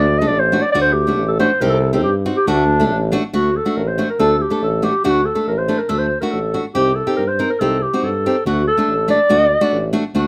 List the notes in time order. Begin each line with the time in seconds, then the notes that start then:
Already playing: D2 D5
0.18 A3 D4 A4 D#5
0.28 D5
0.32 A1
0.40 C5
0.52 A3 D4 F#4
0.62 D5
0.72 D2 A3 D4 F#4 D5
0.82 C5
0.93 G4
1.07 A3 D4 F#4
1.18 A1
1.28 G4 A4
1.32 A4
1.39 A3 D4 F#4 C5
1.61 C2 C4 D#4 G4 A#4
1.70 A4
1.93 C4 D#4 G4 A4
2.03 G2 G4
2.26 C4 D#4 F#4
2.37 G4
2.47 D2 A3 D4 F#4
2.80 A3 D4 A4
2.91 A1
3.12 A3 D4 F#4
3.33 D2 A3 D4 F#4
3.57 A4
3.65 A3 D4 F#4
3.76 A1 A#4
3.88 C5
3.98 A3 D4 F#4
4.10 A#4
4.19 D2 A3 D4 A4
4.42 G4
4.50 A3 D4 A4
4.62 A1 A4
4.82 A3 D4 F#4 G4
5.04 D2 A3 D4 F#4
5.26 A4
5.35 A3 D4 A4
5.47 A1 A#4
5.58 C5
5.68 A3 D4 A4
5.78 A#4
5.89 D2 A3 D4 A4
5.99 C5
6.21 A3 D4 F#4 A#4
6.32 A1 A4
6.54 A3 D4 F#4
6.75 C2 C4 D#4 G4
6.96 A4
7.07 C4 D#4 G4
7.17 G2 A#4
7.28 C5
7.39 C4 D#4 A#4
7.50 A#4
7.60 C2 C4 D#4 G4 A4
7.83 G4
7.93 C4 D#4 F#4
8.03 G2 A4
8.26 C4 D#4 G4
8.45 D2 A3 D4 F#4
8.68 A4
8.77 A3 D4 A4
8.88 A1
9.08 A3 D4 A4 D5
9.29 D2 A3 D4 F#4
9.61 A3 D4 F#4
9.73 A1
9.93 A3 D4 F#4
10.14 D2 A3 D4 F#4